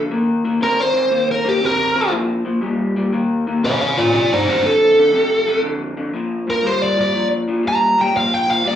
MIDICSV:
0, 0, Header, 1, 3, 480
1, 0, Start_track
1, 0, Key_signature, -2, "major"
1, 0, Tempo, 501672
1, 114, Time_signature, 4, 2, 24, 8
1, 8377, End_track
2, 0, Start_track
2, 0, Title_t, "Lead electric guitar"
2, 0, Program_c, 0, 29
2, 603, Note_on_c, 0, 70, 79
2, 768, Note_off_c, 0, 70, 0
2, 768, Note_on_c, 0, 72, 91
2, 1227, Note_off_c, 0, 72, 0
2, 1257, Note_on_c, 0, 70, 83
2, 1401, Note_off_c, 0, 70, 0
2, 1422, Note_on_c, 0, 67, 80
2, 1578, Note_off_c, 0, 67, 0
2, 1578, Note_on_c, 0, 70, 88
2, 2032, Note_off_c, 0, 70, 0
2, 3490, Note_on_c, 0, 73, 78
2, 3500, Note_on_c, 0, 77, 90
2, 3632, Note_off_c, 0, 73, 0
2, 3638, Note_off_c, 0, 77, 0
2, 3643, Note_on_c, 0, 73, 74
2, 3650, Note_on_c, 0, 77, 78
2, 3787, Note_off_c, 0, 73, 0
2, 3797, Note_off_c, 0, 77, 0
2, 3806, Note_on_c, 0, 65, 85
2, 3813, Note_on_c, 0, 74, 84
2, 3949, Note_off_c, 0, 65, 0
2, 3956, Note_off_c, 0, 74, 0
2, 3968, Note_on_c, 0, 65, 82
2, 3980, Note_on_c, 0, 74, 93
2, 4110, Note_off_c, 0, 65, 0
2, 4136, Note_on_c, 0, 63, 78
2, 4147, Note_off_c, 0, 74, 0
2, 4147, Note_on_c, 0, 72, 92
2, 4284, Note_off_c, 0, 63, 0
2, 4286, Note_off_c, 0, 72, 0
2, 4303, Note_on_c, 0, 63, 80
2, 4307, Note_on_c, 0, 72, 91
2, 4438, Note_off_c, 0, 63, 0
2, 4446, Note_off_c, 0, 72, 0
2, 4459, Note_on_c, 0, 69, 87
2, 5378, Note_off_c, 0, 69, 0
2, 6220, Note_on_c, 0, 70, 87
2, 6379, Note_off_c, 0, 70, 0
2, 6379, Note_on_c, 0, 72, 79
2, 6522, Note_off_c, 0, 72, 0
2, 6526, Note_on_c, 0, 74, 85
2, 6675, Note_off_c, 0, 74, 0
2, 6705, Note_on_c, 0, 74, 94
2, 6950, Note_off_c, 0, 74, 0
2, 7349, Note_on_c, 0, 82, 92
2, 7643, Note_off_c, 0, 82, 0
2, 7665, Note_on_c, 0, 79, 88
2, 7805, Note_off_c, 0, 79, 0
2, 7816, Note_on_c, 0, 77, 86
2, 7978, Note_off_c, 0, 77, 0
2, 7978, Note_on_c, 0, 79, 82
2, 8122, Note_off_c, 0, 79, 0
2, 8132, Note_on_c, 0, 77, 90
2, 8300, Note_off_c, 0, 77, 0
2, 8300, Note_on_c, 0, 74, 86
2, 8377, Note_off_c, 0, 74, 0
2, 8377, End_track
3, 0, Start_track
3, 0, Title_t, "Clean electric guitar"
3, 0, Program_c, 1, 27
3, 108, Note_on_c, 1, 51, 78
3, 110, Note_on_c, 1, 58, 88
3, 402, Note_off_c, 1, 51, 0
3, 403, Note_off_c, 1, 58, 0
3, 427, Note_on_c, 1, 51, 77
3, 432, Note_on_c, 1, 58, 84
3, 567, Note_off_c, 1, 51, 0
3, 575, Note_off_c, 1, 58, 0
3, 579, Note_on_c, 1, 51, 81
3, 584, Note_on_c, 1, 60, 100
3, 877, Note_off_c, 1, 51, 0
3, 880, Note_off_c, 1, 60, 0
3, 892, Note_on_c, 1, 51, 71
3, 899, Note_on_c, 1, 60, 89
3, 1045, Note_off_c, 1, 51, 0
3, 1049, Note_off_c, 1, 60, 0
3, 1055, Note_on_c, 1, 51, 78
3, 1062, Note_on_c, 1, 58, 90
3, 1356, Note_off_c, 1, 51, 0
3, 1359, Note_off_c, 1, 58, 0
3, 1385, Note_on_c, 1, 58, 87
3, 1387, Note_on_c, 1, 51, 84
3, 1528, Note_off_c, 1, 51, 0
3, 1532, Note_off_c, 1, 58, 0
3, 1540, Note_on_c, 1, 51, 72
3, 1542, Note_on_c, 1, 60, 83
3, 1838, Note_off_c, 1, 51, 0
3, 1839, Note_off_c, 1, 60, 0
3, 1867, Note_on_c, 1, 51, 83
3, 1872, Note_on_c, 1, 60, 88
3, 2013, Note_off_c, 1, 51, 0
3, 2015, Note_off_c, 1, 60, 0
3, 2021, Note_on_c, 1, 46, 81
3, 2023, Note_on_c, 1, 53, 94
3, 2318, Note_off_c, 1, 46, 0
3, 2319, Note_off_c, 1, 53, 0
3, 2345, Note_on_c, 1, 46, 74
3, 2349, Note_on_c, 1, 53, 84
3, 2488, Note_off_c, 1, 46, 0
3, 2494, Note_off_c, 1, 53, 0
3, 2499, Note_on_c, 1, 46, 80
3, 2508, Note_on_c, 1, 55, 88
3, 2798, Note_off_c, 1, 46, 0
3, 2802, Note_off_c, 1, 55, 0
3, 2834, Note_on_c, 1, 46, 76
3, 2840, Note_on_c, 1, 55, 84
3, 2976, Note_off_c, 1, 46, 0
3, 2979, Note_off_c, 1, 55, 0
3, 2990, Note_on_c, 1, 51, 80
3, 2995, Note_on_c, 1, 58, 86
3, 3283, Note_off_c, 1, 51, 0
3, 3285, Note_off_c, 1, 58, 0
3, 3322, Note_on_c, 1, 51, 78
3, 3322, Note_on_c, 1, 58, 81
3, 3460, Note_off_c, 1, 51, 0
3, 3460, Note_off_c, 1, 58, 0
3, 3476, Note_on_c, 1, 51, 84
3, 3476, Note_on_c, 1, 60, 83
3, 3766, Note_off_c, 1, 51, 0
3, 3766, Note_off_c, 1, 60, 0
3, 3792, Note_on_c, 1, 51, 78
3, 3792, Note_on_c, 1, 60, 90
3, 3935, Note_off_c, 1, 51, 0
3, 3935, Note_off_c, 1, 60, 0
3, 3947, Note_on_c, 1, 41, 86
3, 3952, Note_on_c, 1, 48, 93
3, 4241, Note_off_c, 1, 41, 0
3, 4244, Note_off_c, 1, 48, 0
3, 4269, Note_on_c, 1, 41, 79
3, 4274, Note_on_c, 1, 48, 77
3, 4409, Note_off_c, 1, 41, 0
3, 4416, Note_off_c, 1, 48, 0
3, 4420, Note_on_c, 1, 41, 83
3, 4424, Note_on_c, 1, 50, 93
3, 4718, Note_off_c, 1, 41, 0
3, 4720, Note_off_c, 1, 50, 0
3, 4755, Note_on_c, 1, 41, 75
3, 4756, Note_on_c, 1, 50, 80
3, 4897, Note_off_c, 1, 41, 0
3, 4897, Note_off_c, 1, 50, 0
3, 4907, Note_on_c, 1, 41, 81
3, 4911, Note_on_c, 1, 48, 85
3, 5201, Note_off_c, 1, 41, 0
3, 5203, Note_off_c, 1, 48, 0
3, 5234, Note_on_c, 1, 41, 84
3, 5242, Note_on_c, 1, 48, 89
3, 5376, Note_off_c, 1, 41, 0
3, 5380, Note_off_c, 1, 48, 0
3, 5389, Note_on_c, 1, 41, 84
3, 5397, Note_on_c, 1, 50, 87
3, 5682, Note_off_c, 1, 41, 0
3, 5686, Note_off_c, 1, 50, 0
3, 5714, Note_on_c, 1, 41, 81
3, 5717, Note_on_c, 1, 50, 86
3, 5856, Note_off_c, 1, 41, 0
3, 5857, Note_off_c, 1, 50, 0
3, 5869, Note_on_c, 1, 46, 80
3, 5873, Note_on_c, 1, 53, 84
3, 6163, Note_off_c, 1, 46, 0
3, 6164, Note_off_c, 1, 53, 0
3, 6191, Note_on_c, 1, 46, 72
3, 6198, Note_on_c, 1, 53, 78
3, 6335, Note_off_c, 1, 46, 0
3, 6338, Note_off_c, 1, 53, 0
3, 6348, Note_on_c, 1, 46, 76
3, 6355, Note_on_c, 1, 55, 88
3, 6642, Note_off_c, 1, 46, 0
3, 6646, Note_off_c, 1, 55, 0
3, 6671, Note_on_c, 1, 46, 74
3, 6677, Note_on_c, 1, 55, 78
3, 6815, Note_off_c, 1, 46, 0
3, 6818, Note_off_c, 1, 55, 0
3, 6832, Note_on_c, 1, 46, 80
3, 6839, Note_on_c, 1, 53, 86
3, 7124, Note_off_c, 1, 46, 0
3, 7128, Note_off_c, 1, 53, 0
3, 7154, Note_on_c, 1, 46, 75
3, 7159, Note_on_c, 1, 53, 80
3, 7290, Note_off_c, 1, 46, 0
3, 7299, Note_off_c, 1, 53, 0
3, 7302, Note_on_c, 1, 46, 72
3, 7304, Note_on_c, 1, 55, 80
3, 7599, Note_off_c, 1, 46, 0
3, 7600, Note_off_c, 1, 55, 0
3, 7634, Note_on_c, 1, 46, 76
3, 7640, Note_on_c, 1, 55, 93
3, 7773, Note_off_c, 1, 46, 0
3, 7780, Note_off_c, 1, 55, 0
3, 7784, Note_on_c, 1, 46, 82
3, 7791, Note_on_c, 1, 53, 85
3, 8081, Note_off_c, 1, 46, 0
3, 8084, Note_off_c, 1, 53, 0
3, 8105, Note_on_c, 1, 46, 72
3, 8112, Note_on_c, 1, 53, 74
3, 8252, Note_off_c, 1, 46, 0
3, 8256, Note_off_c, 1, 53, 0
3, 8267, Note_on_c, 1, 46, 77
3, 8274, Note_on_c, 1, 55, 88
3, 8377, Note_off_c, 1, 46, 0
3, 8377, Note_off_c, 1, 55, 0
3, 8377, End_track
0, 0, End_of_file